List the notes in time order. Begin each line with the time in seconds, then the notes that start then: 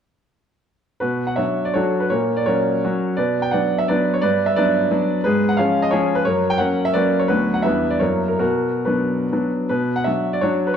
1.00 B2 F#4 B4
1.27 F#5
1.36 F#3 D4 F#4 C#5 E5
1.65 D5
1.74 F#3 D4 F#4 A4 C#5
2.00 B4
2.10 A#2 A#4 C#5
2.37 D5
2.46 F#3 C#4 F#4 A#4 C#5
2.84 F#3 C#4 F#4
3.17 B2 B4 D5
3.42 G5
3.51 F#3 B3 D4 D5 F#5
3.78 E5
3.88 F#3 B3 D4 B4 D5
4.14 C#5
4.21 G2 B4 D5
4.46 E5
4.56 F#3 B3 D4 B4 D5
4.91 F#3 B3 D4
5.24 G#2 G#4 B4
5.49 F#5
5.57 F3 G#3 C#4 C#5 F5
5.82 D#5
5.91 F3 G#3 C#4 G#4 C#5
6.15 B4
6.25 F#2 A#4 C#5
6.50 G5
6.58 F#3 A#3 C#4 C#5 F#5
6.85 E5
6.94 F#3 A#3 C#4 B4 D5
7.19 C#5
7.28 D2 F#3 B3 D4 F#4 B4
7.54 F#5
7.62 E2 G3 B3 D4 B4 E5
7.90 D5
7.99 F#2 F#3 A#3 E4 A#4 C#5
8.28 A#4
8.39 B2 F#4 A#4
8.85 F#3 B3 D4 F#4 B4
9.32 F#3 B3 D4
9.69 B2 B4
9.96 F#5
10.04 F#3 D4 F#4 E5
10.33 D5
10.41 F#3 D4 F#4 C#5
10.67 B4